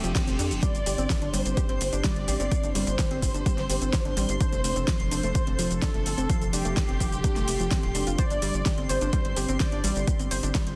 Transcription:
Already playing: F3 C4 D4 G4 A4 C6, reverse cymbal
0.04 F1 F3, closed hi-hat, shaker
0.15 C4, kick, snare, closed hi-hat, shaker
0.27 F1 C4, closed hi-hat, shaker
0.39 F2 D4, open hi-hat, shaker
0.51 F1, closed hi-hat, shaker
0.62 G3 D4 G4 D5 C6, kick, closed hi-hat, shaker
0.75 G1, closed hi-hat, shaker
0.86 G1 G4, open hi-hat, shaker
0.98 G1 C4, closed hi-hat, shaker
1.10 kick, snare, closed hi-hat, shaker
1.22 G1 D4, closed hi-hat
1.33 G1 G3 C5, open hi-hat, shaker
1.45 G1, closed hi-hat, shaker
1.57 G4, kick, closed hi-hat, shaker
1.69 G1 C4, closed hi-hat
1.81 G1, open hi-hat, shaker
1.93 G1 D4, closed hi-hat, shaker
2.04 G3 D5, kick, snare, closed hi-hat, shaker
2.16 G1, closed hi-hat
2.28 A1 G4, open hi-hat, shaker
2.40 G1 C4, closed hi-hat, shaker
2.52 kick, closed hi-hat, shaker
2.63 G1 D4, closed hi-hat, shaker
2.75 G1 G3 C5, open hi-hat, shaker
2.87 G1, closed hi-hat, shaker
2.99 G4, kick, snare, closed hi-hat, shaker
3.11 G1 C4, closed hi-hat
3.22 G1, kick, open hi-hat, shaker
3.34 G1 D4, closed hi-hat, shaker
3.46 G3, kick, closed hi-hat, shaker
3.58 G1, snare, closed hi-hat
3.70 G1 G4, open hi-hat, shaker
3.81 G1 C4, closed hi-hat, shaker
3.93 kick, snare, closed hi-hat, shaker
4.05 G1 D4, closed hi-hat
4.17 A1 G3, open hi-hat, shaker
4.29 G1, closed hi-hat, shaker
4.40 F3 D4 A4 C5, kick, closed hi-hat, shaker
4.52 F1 A3, closed hi-hat, shaker
4.64 F1, open hi-hat, shaker
4.76 F1 C4, closed hi-hat, shaker
4.88 F3, kick, snare, closed hi-hat, shaker
5.00 F1, closed hi-hat
5.11 F1 D4 C5, open hi-hat, shaker
5.23 F1 A3, closed hi-hat, shaker
5.35 kick, closed hi-hat, shaker
5.47 F1 C4, closed hi-hat
5.59 F1 F3, open hi-hat, shaker
5.71 F1, closed hi-hat, shaker
5.82 D4 A4, kick, snare, closed hi-hat, shaker
5.94 F1 A3, closed hi-hat
6.06 G1, open hi-hat, shaker
6.18 F1 C4, closed hi-hat, shaker
6.30 F3, kick, closed hi-hat, shaker
6.42 F1, closed hi-hat, shaker
6.53 F1 D4 G4, open hi-hat, shaker
6.65 F1 A3, closed hi-hat, shaker
6.77 kick, snare, closed hi-hat, shaker
6.89 F1 C4, closed hi-hat
7.00 F1 F3, kick, open hi-hat, shaker
7.12 F1, closed hi-hat, shaker
7.24 D4, kick, closed hi-hat, shaker
7.36 F1 A3, snare, closed hi-hat, shaker
7.48 F1 A3, open hi-hat, shaker
7.60 F1 F3, closed hi-hat, shaker
7.71 C4, kick, snare, closed hi-hat, shaker
7.83 D1, closed hi-hat
7.95 F1 D4, open hi-hat, shaker
8.07 F1 F4, closed hi-hat, shaker
8.18 C4 G4 C5 D5, kick, closed hi-hat, shaker
8.30 G1 D4, closed hi-hat, shaker
8.42 G1 G3, open hi-hat, shaker
8.54 G1, closed hi-hat, shaker
8.66 G4, kick, snare, closed hi-hat, shaker
8.78 G1 C4, closed hi-hat
8.89 G1 C5, open hi-hat, shaker
9.01 G1 D4, closed hi-hat, shaker
9.13 G3, kick, closed hi-hat, shaker
9.25 G1, closed hi-hat
9.36 G1 G4, open hi-hat, shaker
9.49 G1 C4, closed hi-hat, shaker
9.60 C5 D5, kick, snare, closed hi-hat, shaker
9.72 G1 D4, closed hi-hat
9.84 A1 G3, open hi-hat, shaker
9.96 G1, closed hi-hat, shaker
10.07 G4, kick, closed hi-hat, shaker
10.19 G1 C4, closed hi-hat, shaker
10.31 G1 C5, open hi-hat, shaker
10.43 G1 D4, closed hi-hat, shaker
10.55 G3, kick, snare, closed hi-hat, shaker
10.67 G1, closed hi-hat

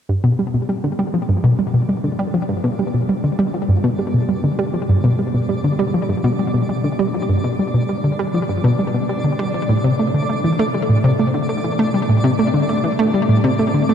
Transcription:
0.09 G2 D4 D5
0.24 B2
0.39 G3
0.54 B2
0.69 G3
0.84 D3
0.99 G3
1.14 F3
1.29 G2
1.44 B2
1.59 G3
1.74 B2
1.89 G3
2.04 D3
2.19 G3
2.34 F3
2.49 G2
2.64 B2
2.79 G3
2.94 B2
3.09 G3
3.24 D3
3.39 G3
3.54 F3
3.69 G2
3.84 B2
3.99 G3
4.14 B2
4.29 G3
4.44 D3
4.59 G3
4.74 F3
4.89 G2
5.04 B2
5.19 G3
5.34 B2
5.49 G3
5.64 D3
5.79 G3
5.94 F3
6.09 G2
6.24 B2
6.39 G3
6.54 B2
6.69 G3
6.84 D3
6.99 G3
7.14 F3
7.29 G2
7.44 B2
7.59 G3
7.74 B2
7.89 G3
8.04 D3
8.19 G3
8.34 F3
8.49 G2
8.64 B2
8.79 G3
8.94 B2
9.09 G3
9.24 D3
9.39 G3
9.54 F3
9.69 A2
9.84 C3
9.99 A3
10.14 D3
10.29 A3
10.44 E3
10.59 A3
10.74 G3
10.89 A2
11.04 C3
11.19 A3
11.34 D3
11.49 A3
11.64 E3
11.79 A3
11.94 G3
12.09 A2
12.24 C3
12.39 A3
12.54 D3
12.69 A3
12.84 E3
12.99 A3
13.14 G3
13.29 A2
13.44 C3
13.59 A3
13.74 D3
13.89 A3

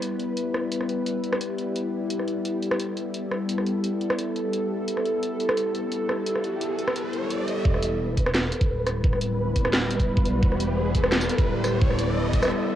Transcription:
Already playing: G3 B3 E4 B4
0.02 closed hi-hat
0.20 closed hi-hat
0.37 closed hi-hat
0.54 cross-stick
0.72 closed hi-hat
0.81 cross-stick
0.89 closed hi-hat
1.06 closed hi-hat
1.24 closed hi-hat
1.33 cross-stick
1.41 closed hi-hat
1.58 closed hi-hat
1.76 closed hi-hat
2.10 A4, closed hi-hat
2.19 cross-stick
2.28 closed hi-hat
2.45 closed hi-hat
2.62 closed hi-hat
2.71 cross-stick
2.79 closed hi-hat
2.97 closed hi-hat
3.14 closed hi-hat
3.31 cross-stick
3.49 closed hi-hat
3.58 cross-stick
3.66 closed hi-hat
3.84 closed hi-hat
4.01 closed hi-hat
4.10 cross-stick
4.19 closed hi-hat
4.36 closed hi-hat
4.53 closed hi-hat
4.88 closed hi-hat, riser
4.97 cross-stick
5.05 closed hi-hat
5.23 closed hi-hat
5.40 closed hi-hat
5.49 cross-stick
5.57 closed hi-hat
5.75 closed hi-hat
5.92 closed hi-hat
6.09 cross-stick
6.27 closed hi-hat
6.36 cross-stick
6.44 closed hi-hat
6.61 closed hi-hat
6.79 closed hi-hat
6.88 cross-stick
6.96 closed hi-hat
7.13 closed hi-hat
7.31 closed hi-hat
7.48 closed hi-hat
7.65 E1 G3 B3 E4 B4, kick, riser
7.74 cross-stick
7.83 closed hi-hat
8.17 kick, closed hi-hat
8.26 cross-stick
8.35 snare
8.52 closed hi-hat
8.61 kick, closed hi-hat
8.69 D1
8.87 cross-stick, closed hi-hat
9.04 kick
9.13 cross-stick
9.21 closed hi-hat
9.56 kick, closed hi-hat
9.65 cross-stick
9.73 snare
9.91 closed hi-hat
10.00 kick, closed hi-hat
10.17 kick
10.25 B1, closed hi-hat
10.42 E1 A4, kick
10.52 cross-stick
10.60 closed hi-hat
10.95 kick, closed hi-hat
11.04 cross-stick
11.12 snare
11.21 tambourine
11.29 closed hi-hat
11.38 kick, closed hi-hat
11.47 D1
11.64 cross-stick, closed hi-hat, tambourine
11.81 kick
11.90 cross-stick
11.99 closed hi-hat
12.33 kick, closed hi-hat
12.42 cross-stick, tambourine
12.45 cross-stick
12.48 cross-stick

